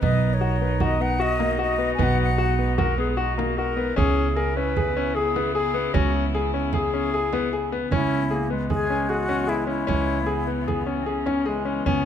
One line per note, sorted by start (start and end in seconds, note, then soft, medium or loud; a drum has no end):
0.02 1.95 B1 medium
0.02 3.94 B2 medium
0.02 0.31 B3 medium
0.02 1.21 D#4 medium
0.02 3.94 D#4 medium
0.02 1.98 A#4 medium
0.02 0.35 D#5 medium
0.02 frame drum medium
0.33 0.84 C#5 medium
0.41 0.56 F#4 medium
0.61 0.76 B3 medium
0.80 0.95 F#4 medium
0.80 1.03 D#5 medium
0.80 frame drum medium
1.00 1.15 B3 medium
1.00 1.23 F#5 medium
1.20 2.81 F#4 medium
1.20 1.34 F#4 medium
1.20 1.61 D#5 medium
1.20 frame drum soft
1.39 1.54 A#3 medium
1.39 frame drum medium
1.59 1.74 F#4 medium
1.59 1.93 D#5 medium
1.59 frame drum soft
1.78 1.93 B3 medium
1.95 2.28 B3 medium
1.95 2.04 G#5 medium
1.99 3.93 B1 medium
1.99 3.95 G#3 medium
1.99 2.21 F#5 medium
1.99 frame drum medium
2.22 2.76 F#5 medium
2.38 2.53 F#4 medium
2.38 frame drum soft
2.59 2.73 B3 medium
2.78 2.93 F#4 medium
2.78 2.98 A#4 medium
2.78 frame drum medium
2.98 3.13 B3 medium
2.98 3.09 G#4 medium
2.98 frame drum soft
3.10 3.21 G#4 medium
3.17 3.32 F#4 medium
3.17 3.59 F#4 medium
3.17 frame drum soft
3.38 3.52 A#3 medium
3.38 frame drum medium
3.58 3.72 F#4 medium
3.58 3.96 A#4 medium
3.58 frame drum soft
3.77 3.91 B3 medium
3.96 5.91 C#2 medium
3.96 7.89 C#3 medium
3.96 7.89 B3 medium
3.96 4.25 C#4 medium
3.96 7.88 E4 medium
3.96 4.38 G#4 loud
3.96 frame drum medium
4.17 frame drum soft
4.36 4.51 G#4 medium
4.36 4.58 A#4 medium
4.36 frame drum soft
4.56 4.71 C#4 medium
4.56 5.16 B4 loud
4.77 4.91 G#4 medium
4.77 frame drum medium
4.97 5.11 C#4 medium
4.97 frame drum soft
5.15 5.53 G#4 medium
5.15 5.30 G#4 medium
5.15 frame drum soft
5.36 5.50 B3 medium
5.36 frame drum soft
5.54 5.95 G#4 medium
5.54 5.69 G#4 medium
5.54 frame drum soft
5.74 5.89 B3 medium
5.94 7.88 C#2 medium
5.94 6.23 C#4 medium
5.94 6.14 F#4 medium
5.94 frame drum medium
6.15 frame drum soft
6.35 6.49 G#4 medium
6.54 6.68 C#4 medium
6.73 7.68 G#4 medium
6.73 6.88 G#4 medium
6.73 frame drum medium
6.94 7.08 C#4 medium
7.13 7.28 G#4 medium
7.13 frame drum soft
7.33 7.47 B3 medium
7.33 frame drum soft
7.53 7.67 G#4 medium
7.53 frame drum soft
7.72 7.87 B3 medium
7.72 frame drum soft
7.91 9.85 C#2 medium
7.91 12.05 C#3 medium
7.91 12.05 E3 medium
7.91 12.05 B3 medium
7.91 8.28 C#4 medium
7.91 8.21 C#4 medium
7.91 8.47 E4 medium
7.91 frame drum medium
8.30 8.50 A#3 medium
8.30 8.45 G#4 medium
8.50 10.24 G#3 medium
8.50 8.65 B3 medium
8.50 frame drum soft
8.70 8.85 G#4 medium
8.70 9.11 G#4 medium
8.70 frame drum soft
8.90 9.05 C#4 medium
8.90 frame drum soft
9.09 9.50 F#4 medium
9.09 9.25 G#4 medium
9.29 9.44 C#4 medium
9.29 frame drum soft
9.47 9.68 E4 medium
9.47 9.63 G#4 medium
9.47 frame drum soft
9.67 9.82 C#4 medium
9.67 10.84 E4 medium
9.87 11.83 C#2 medium
9.87 10.17 C#4 medium
9.87 frame drum medium
10.22 10.30 A#3 medium
10.26 11.04 B3 medium
10.26 10.42 G#4 medium
10.47 10.62 B3 medium
10.47 frame drum soft
10.68 10.82 G#4 medium
10.68 frame drum soft
10.86 11.02 C#4 medium
10.86 frame drum soft
11.02 11.09 C4 medium
11.06 11.49 C#4 medium
11.06 11.21 G#4 medium
11.26 11.41 C#4 medium
11.26 frame drum soft
11.46 11.88 G#3 medium
11.46 11.61 G#4 medium
11.46 frame drum soft
11.65 11.81 C#4 medium
11.86 12.05 C#2 medium
11.86 12.05 B3 medium
11.86 12.05 C#4 medium
11.86 frame drum medium